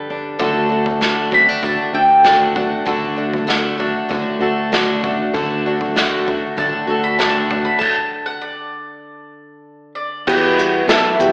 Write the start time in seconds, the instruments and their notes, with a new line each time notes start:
Already playing: steel-string acoustic guitar G2 D3 G3 A4 B4
0.10 steel-string acoustic guitar D4
0.39 fingered electric bass D2, twelve-string acoustic guitar D3 A3 D4 F#4, kick, floor tom
0.43 steel-string acoustic guitar A4
0.69 twelve-string acoustic guitar A3 D4 F#4
0.86 floor tom
1.01 twelve-string acoustic guitar D3 A3 D4 F#4, snare
1.31 twelve-string acoustic guitar A3 D4 F#4, steel-string acoustic guitar C4, mandolin B5, floor tom
1.49 steel-string acoustic guitar D4
1.62 fingered electric bass D2, steel-string acoustic guitar A2, twelve-string acoustic guitar D3 A3 D4 F#4, mandolin A5, kick, floor tom
1.93 fingered electric bass D2, twelve-string acoustic guitar A3 D4, steel-string acoustic guitar A4, mandolin G5
2.24 twelve-string acoustic guitar D3 A3 D4 F#4, mandolin A5, snare, floor tom
2.55 twelve-string acoustic guitar A3 D4 F#4, mandolin F#5, floor tom, mid tom
2.86 fingered electric bass D2, twelve-string acoustic guitar D3 A3 D4 F#4, steel-string acoustic guitar A4, kick, floor tom
3.16 twelve-string acoustic guitar A3 D4 F#4
3.33 floor tom
3.47 twelve-string acoustic guitar D3 A3 D4 F#4, snare
3.78 twelve-string acoustic guitar A3 D4 F#4, floor tom
4.09 fingered electric bass D2, steel-string acoustic guitar A2, twelve-string acoustic guitar D3 A3 D4 F#4, kick, floor tom
4.39 fingered electric bass D2, twelve-string acoustic guitar A3 D4 F#4, steel-string acoustic guitar A4
4.72 twelve-string acoustic guitar D3 A3 D4 F#4, snare, floor tom
5.03 twelve-string acoustic guitar A3 D4 F#4, floor tom, mid tom
5.34 fingered electric bass D2, twelve-string acoustic guitar D3 A3 D4 F#4, steel-string acoustic guitar A4, kick, floor tom
5.66 twelve-string acoustic guitar A3 D4 F#4
5.81 floor tom
5.96 twelve-string acoustic guitar D3 A3 D4 F#4, mandolin F#5, snare
6.26 twelve-string acoustic guitar A3 D4 F#4, floor tom
6.57 fingered electric bass D2, steel-string acoustic guitar A2, twelve-string acoustic guitar D3 A3 D4 F#4, mandolin A5, kick, floor tom
6.87 fingered electric bass D2, twelve-string acoustic guitar A3 D4 F#4, steel-string acoustic guitar A4
7.04 mandolin B5
7.19 twelve-string acoustic guitar D3 A3 D4 F#4, mandolin A5, snare, floor tom
7.50 twelve-string acoustic guitar A3 D4 F#4, floor tom, mid tom
7.65 mandolin B5
7.79 mandolin A5, kick, crash
8.26 mandolin F#5
8.41 mandolin D5
9.95 mandolin D5
10.27 fingered electric bass E2, twelve-string acoustic guitar E2 B2 E3 G3 B3 F#4, ukulele G4, mandolin F#5, kick, crash, shaker
10.58 twelve-string acoustic guitar E3 G3 B3 F#4, closed hi-hat, shaker
10.88 fingered electric bass B1, twelve-string acoustic guitar E3 G3, ukulele A4, mandolin E5, snare, closed hi-hat, shaker
10.92 twelve-string acoustic guitar B3 F#4
11.19 fingered electric bass E2, twelve-string acoustic guitar E3 G3 B3 F#4, ukulele G4, kick, closed hi-hat, shaker